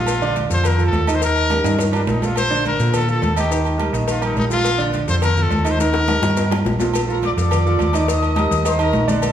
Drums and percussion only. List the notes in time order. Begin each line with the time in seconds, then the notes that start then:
0.06 cowbell, high conga, low agogo, maracas
0.22 high conga, maracas
0.36 cowbell, high conga, low timbale, low agogo, maracas
0.51 cowbell, maracas
0.64 cowbell, high conga, low conga, low agogo, maracas
0.79 high conga, maracas
0.93 cowbell, high conga, low timbale, low agogo, maracas
1.07 cowbell, low agogo, maracas
1.22 cowbell, high conga, maracas
1.35 high conga, low agogo, maracas
1.50 cowbell, high conga, high timbale, low agogo, maracas
1.64 cowbell, high conga, high timbale, maracas
1.79 cowbell, low timbale, low agogo, maracas
1.93 low timbale, low agogo, maracas
2.07 cowbell, high conga, low timbale, maracas
2.22 cowbell, high conga, low timbale, low agogo, maracas
2.36 cowbell, high conga, low agogo, maracas
2.51 high conga, maracas
2.65 cowbell, high conga, low timbale, low agogo, maracas
2.80 cowbell, high conga, maracas
2.94 cowbell, high conga, low conga, low agogo, maracas
3.08 high conga, maracas
3.22 cowbell, high conga, low timbale, low agogo, maracas
3.36 cowbell, high conga, low agogo, maracas
3.51 cowbell, high conga, maracas
3.65 high conga, low agogo, maracas
3.79 cowbell, high conga, low timbale, low agogo, maracas
3.94 cowbell, high conga, maracas
4.08 cowbell, high conga, low agogo, maracas
4.22 low agogo, maracas
4.36 cowbell, high conga, low timbale, maracas
4.51 cowbell, high conga, low agogo, maracas
4.65 cowbell, high conga, low agogo, maracas
4.80 high conga, maracas
4.93 cowbell, high conga, low timbale, low agogo, maracas
5.08 cowbell, high conga, maracas
5.22 cowbell, high conga, low conga, low agogo, maracas
5.37 high conga, low conga, maracas
5.50 cowbell, high conga, low timbale, low agogo, maracas
5.65 cowbell, high conga, low agogo, maracas
5.80 cowbell, high bongo, high conga, maracas
5.93 high bongo, high conga, low agogo, maracas
6.08 cowbell, high bongo, high conga, high timbale, low agogo, maracas
6.23 cowbell, low bongo, high conga, maracas
6.37 cowbell, low bongo, high conga, low agogo, maracas
6.51 low bongo, high conga, low timbale, low agogo, maracas
6.65 cowbell, low bongo, high conga, maracas
6.79 cowbell, low bongo, high conga, low timbale, low agogo, maracas
6.94 cowbell, high conga, low agogo, maracas
7.08 high conga, maracas
7.22 cowbell, high conga, low timbale, low agogo, maracas
7.37 cowbell, high conga, maracas
7.51 cowbell, high conga, low conga, low agogo, maracas
7.65 high conga, maracas
7.79 cowbell, high conga, low timbale, low agogo, maracas
7.93 cowbell, low agogo, maracas
8.08 cowbell, high conga, maracas
8.22 high conga, low agogo, maracas
8.36 cowbell, high conga, low timbale, low agogo, maracas
8.51 cowbell, high conga, maracas
8.65 cowbell, high conga, low agogo, maracas
8.79 high conga, low agogo, maracas
8.93 cowbell, high conga, low timbale, maracas
9.08 cowbell, high conga, low agogo, maracas
9.22 cowbell, high conga, low agogo, maracas